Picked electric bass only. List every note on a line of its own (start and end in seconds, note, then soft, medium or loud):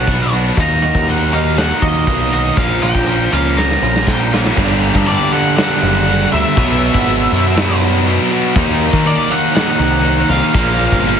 0.07 0.51 B1 loud
0.57 0.90 D#2 medium
0.95 1.70 D#2 loud
1.82 2.04 D#2 medium
2.07 2.50 B1 medium
2.57 2.79 A#1 loud
2.83 2.94 A#1 medium
2.94 3.27 A#1 medium
3.33 3.76 C#2 medium
3.82 4.04 A#1 loud
4.07 4.50 A#1 loud
4.57 4.90 G1 loud
4.95 5.16 G2 medium
5.83 6.25 F#1 medium
6.33 6.43 D2 loud
6.57 6.89 B1 loud
6.95 7.26 G#1 loud
7.32 8.17 F#2 medium
8.56 8.88 D#2 loud
8.93 9.14 D#3 loud
9.79 10.23 C2 medium
10.29 10.40 C2 loud
10.54 10.87 A#1 loud
10.92 11.20 G1 loud